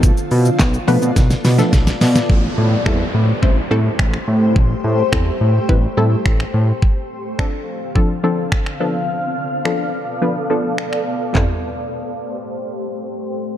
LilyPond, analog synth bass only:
\new Staff \with { instrumentName = "Analog synth bass" } { \clef bass \time 4/4 \key a \minor \tempo 4 = 106 b,,8 b,8 b,,8 b,16 b,16 b,,8 b,8 b,,8 b,8 | a,,8 a,8 e,8 a,8 a,,8 a,8 a,,8 a,8 | a,,8 a,8 e,8 a,8 a,,8 a,8 a,,8 a,8 | r1 |
r1 | r1 | }